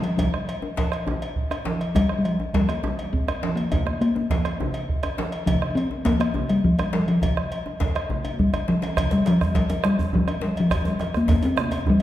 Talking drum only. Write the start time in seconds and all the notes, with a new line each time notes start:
0.02 F3
0.17 F3
1.96 G3
2.19 G3
2.25 F3
2.54 G3
2.68 A#3
3.13 C4
3.56 A#3
3.86 A#3
4.01 A#3
4.15 A#3
5.46 F3
5.71 D4
5.75 C4
6.05 A#3
6.20 A#3
6.50 G3
6.64 F3
6.93 G3
7.08 F3
7.22 F3
8.33 A#3
8.39 G3
8.69 F3
8.99 F3
9.13 G3
9.27 F3
9.52 A#3
9.56 G3
9.71 F3
9.85 G3
10.15 F3
10.45 G3
10.60 F3
10.74 F3
10.88 G3
11.02 F3
11.17 A#3
11.32 A#3
11.45 C4
11.60 A#3
11.89 G3